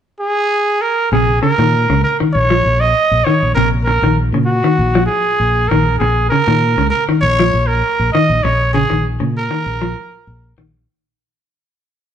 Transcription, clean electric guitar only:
1.13 C3
1.43 C#3
1.59 D#3
1.90 C#3
2.20 D#3
2.50 F3
3.27 D#3
3.57 C3
3.87 muted clean electric guitar stroke
4.04 D#3
4.34 C#3
4.64 D#3
4.95 F3
5.71 D#3
6.01 muted clean electric guitar stroke
6.32 C#3
6.48 D#3
6.78 C#3
7.09 D#3
7.40 F3
8.15 D#3
8.45 muted clean electric guitar stroke
8.74 C#3
8.90 D#3
9.20 C#3
9.51 D#3
9.82 F3
10.58 D#3

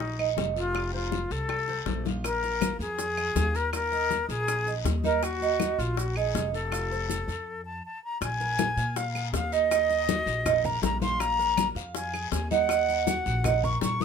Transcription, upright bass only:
Already playing: A#1
0.37 F1
1.30 C2
1.86 A#1
2.79 F2
3.35 D#2
4.29 A#1
4.85 D#2
5.79 A#1
6.35 F1
7.28 F2
8.21 A#1
8.77 A#2
9.33 D#2
10.26 A#1
10.82 A#1
11.75 F2
12.32 D#2
13.26 A#1
13.82 A#1

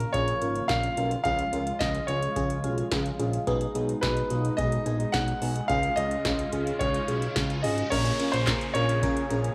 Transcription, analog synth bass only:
0.14 A#1
0.42 G#1
0.70 A#1
0.97 B1
1.25 C#2
1.53 C#2
1.81 C#2
2.08 C#2
2.36 C#2
2.64 B1
2.92 C#2
3.19 A#1
3.47 B1
3.75 B1
4.03 B1
4.31 B1
4.58 B1
4.86 A#1
5.14 B1
5.42 B1
5.70 C#2
5.97 C#2
6.25 C#2
6.53 C#2
6.81 C#2
7.08 B1
7.36 C#2
7.64 G#1
7.92 A#1
8.33 A#1
8.75 A#1
9.31 A#1

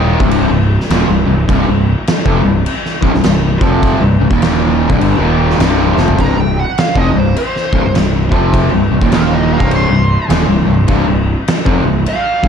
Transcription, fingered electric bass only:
Already playing: D#1
0.20 C1
0.50 C1
0.90 D#1
1.09 C1
1.28 C1
1.49 C1
1.68 C1
2.26 F1
2.45 C1
3.03 C1
3.13 C1
3.24 C1
3.61 F1
4.01 C1
4.20 C1
4.31 D#1
4.90 C1
5.01 G1
5.18 D#1
5.59 C1
5.97 F1
6.19 C1
6.37 C1
6.96 F1
7.15 C1
7.73 C1
7.84 C1
7.95 C1
8.32 F1
8.72 C1
8.91 C1
9.02 D#1
9.61 C1
9.90 C1
10.30 D#1
10.49 C1
10.66 C1
10.89 C1
11.07 C1
11.67 F1
11.85 C1
12.44 C1

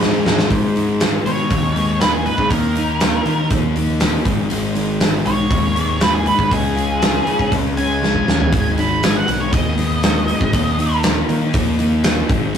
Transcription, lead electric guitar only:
1.26 C#5
2.01 B4
2.14 G#4
2.26 B4
2.50 A#4
5.26 C#5
6.02 B4
6.14 G#4
6.27 B4
6.52 G#4
7.77 G#5
8.79 B5
9.04 G#5
9.16 F#5
9.40 C#5
9.53 D#5

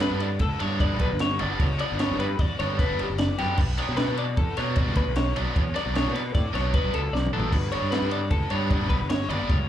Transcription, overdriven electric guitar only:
0.00 D3 G3 B3 D4
0.60 D3 G3 B3 D4
0.81 D3 G3 B3 D4
1.40 D3 G3 B3 D4
1.79 D3 G3 B3 D4
1.99 D3 G3 B3 D4
2.60 D3 G3 B3 D4
2.80 D3 G3 B3 D4
3.39 D3 G3 B3 D4
3.78 B2 F#3 B3 D4
3.99 B2 F#3 B3 D4
4.58 B2 F#3 B3 D4
4.77 B2 F#3 B3 D4
5.36 B2 F#3 B3 D4
5.75 B2 F#3 B3 D4
5.94 B2 F#3 B3 D4
6.54 B2 F#3 B3 D4
6.74 B2 F#3 B3 D4
7.34 B2 F#3 B3 D4
7.73 D3 G3 B3 D4
7.93 D3 G3 B3 D4
8.51 D3 G3 B3 D4
8.72 D3 G3 B3 D4
9.30 D3 G3 B3 D4

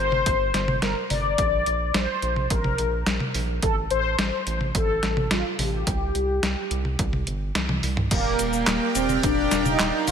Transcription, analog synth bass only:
0.00 G1
0.26 G1
0.54 G1
0.82 G1
1.10 G1
1.38 A#1
1.67 A#1
1.95 A#1
2.23 A#1
2.51 A#1
2.79 A#1
3.07 A#1
3.35 A#1
3.63 A1
3.91 A1
4.19 A1
4.47 A1
4.75 A1
5.03 A1
5.31 A1
5.59 A1
5.87 C2
6.15 C2
6.43 C2
6.71 C2
6.99 C2
7.27 G1
7.55 C2
7.83 C2
8.11 D#1
8.39 D#1
8.67 D#1
8.95 D#1
9.24 D#1
9.51 D#1
9.79 D#1
10.07 D#1

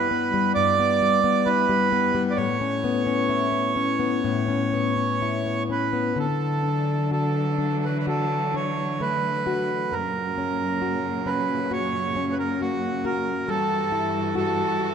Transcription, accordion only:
Already playing: B4
0.55 D5
1.46 B4
2.31 D5
2.36 C#5
5.71 B4
6.19 A4
7.12 A4
7.85 B4
7.99 B4
8.08 A4
8.56 C#5
9.01 B4
9.92 A#4
11.26 B4
11.72 C#5
12.32 B4
12.39 A#4
12.61 F#4
13.05 A#4
13.48 A4
14.37 A4

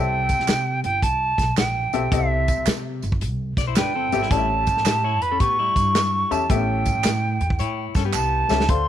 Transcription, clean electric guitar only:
3.58 D5
3.67 E4 C5
3.77 D4 B4
3.95 C4 A4
4.13 B3 G4
4.22 G3 E4
4.86 G4 E5
5.04 E4 C#5
5.22 B4
5.31 C#4 A4
5.41 B3 G4
5.59 G3 E4
7.59 E4 C#5
7.96 C#4 A4
8.05 B3 G4

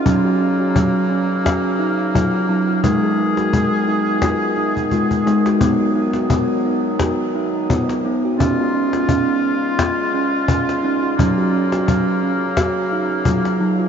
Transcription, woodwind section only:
Already playing: C#3
0.05 F#3 A#3
2.82 D#3 B3 G#4
5.61 D#3 F#3
8.38 C#3 G#3 F4
11.17 F#3 A#3

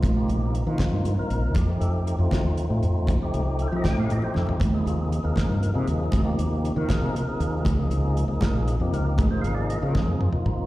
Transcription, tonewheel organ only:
Already playing: C3 F3 A#3 D#4
0.06 F4
0.15 C3 F3 A#3 D#4 G4
0.32 G4
0.66 C3 F3 A#3 D#4 F4
1.17 C3 F3 A#3 D#4 A#4
1.58 G4
1.68 F3 A3 C4 D#4 G4
1.80 A4
2.19 F3 A3 C4 D#4 F4
2.69 F3 A3 C4 D#4 F4
3.20 F3 A3 C4 D#4 G4
3.62 A4
3.68 F3 C5
3.72 A3 C4 D#4 G4 D#5
3.85 G5
3.99 F5
4.12 D#5
4.21 F3 A3 C4 D#4 G4 C5
4.37 A4
4.50 F4
4.63 D#4
4.73 C3 F3 A#3 D#4 G#4
4.77 E4
4.89 F4
5.04 G#4
5.23 C3 F3 A#3 D#4 A#4
5.73 C3 F3 A#3 D#4 G#4
6.23 C3 F3 A#3 D#4 G4
6.76 C3 F3 A#3 D#4 A#4
6.91 G#4
7.18 A#4
7.27 C3 F3 A#3 D#4 G#4
7.67 G#4
7.77 C3 F3 A#3 D#4 G#4
8.28 C3 F3 A#3 D#4 G#4
8.42 A#4
8.80 C3 F3 A#3 D#4 G4
8.93 A#4
9.07 G4
9.18 G#4
9.31 C3 F3 A#3 D#4 G#4 C5
9.41 F5
9.54 D5
9.69 D#5
9.78 C3 F3 A#3 D#4 A#4
9.83 G#4
9.88 F4
9.94 C#4
10.09 D#4
10.21 F4
10.32 C3 F3 A#3 D#4 F4

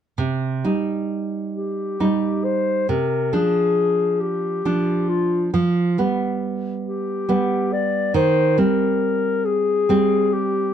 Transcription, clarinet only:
1.56 G4
2.45 C5
2.89 A#4
3.33 G#4
4.21 G4
5.08 F4
6.84 G4
7.73 D5
8.16 C5
8.59 A#4
9.45 G#4
10.33 G4

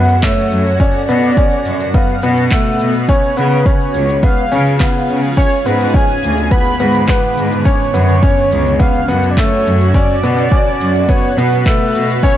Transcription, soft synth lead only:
Already playing: F#5
0.23 C#5
0.80 D5
1.94 F5
2.23 F#5
3.09 C#5
3.37 B4
3.66 C#5
4.23 F5
5.37 C#5
5.66 B4
5.94 G#5
6.51 B5
7.09 B4
7.66 C#5
8.80 F5
9.09 F#5
9.30 D5
9.38 C#5
9.95 D5
11.09 C#5
11.37 B4
12.23 C#5

